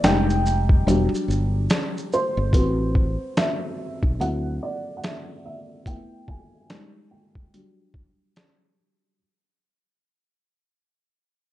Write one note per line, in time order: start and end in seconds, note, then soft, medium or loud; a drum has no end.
0.04 0.82 F1 medium
0.04 0.83 G3 medium
0.04 0.83 G#3 medium
0.04 0.83 D#4 medium
0.04 1.66 G5 medium
0.04 snare loud
0.04 closed hi-hat medium
0.04 shaker medium
0.30 shaker soft
0.46 shaker medium
0.69 kick medium
0.86 1.10 E1 medium
0.86 2.08 F#3 medium
0.86 2.07 G3 medium
0.86 2.07 D4 medium
0.86 closed hi-hat medium
0.86 shaker medium
1.15 shaker soft
1.28 1.67 G1 medium
1.28 shaker medium
1.70 snare loud
1.70 closed hi-hat medium
1.70 shaker medium
1.97 shaker soft
2.13 3.41 C5 medium
2.13 shaker soft
2.37 2.52 G1 medium
2.53 3.16 A1 medium
2.53 3.74 C4 medium
2.53 3.75 F#4 medium
2.53 3.74 B4 medium
2.53 kick loud
2.53 closed hi-hat medium
2.95 kick medium
3.37 4.22 E5 medium
3.37 snare loud
3.37 closed hi-hat medium
4.03 4.18 B1 medium
4.03 kick medium
4.20 4.58 D2 medium
4.20 5.41 F#3 medium
4.20 5.41 C4 soft
4.20 5.41 E4 medium
4.20 4.63 F#5 medium
4.20 closed hi-hat medium
4.63 4.99 D5 medium
4.97 5.02 F#5 medium
5.04 5.13 E5 medium
5.04 snare loud
5.04 closed hi-hat medium
5.45 5.88 E5 medium
5.86 6.66 A3 medium
5.86 6.66 B3 soft
5.86 6.66 E4 medium
5.86 6.29 G5 loud
5.86 kick loud
5.86 closed hi-hat medium
6.28 7.13 G#5 loud
6.28 kick medium
6.70 7.29 G3 medium
6.70 7.29 G#3 soft
6.70 7.30 D#4 medium
6.70 snare loud
6.70 closed hi-hat medium
7.11 8.73 G5 medium
7.35 kick medium
7.53 9.16 F#3 medium
7.53 9.15 G3 medium
7.53 9.16 D4 soft
7.53 closed hi-hat medium
7.94 kick medium
8.36 snare loud
8.36 closed hi-hat medium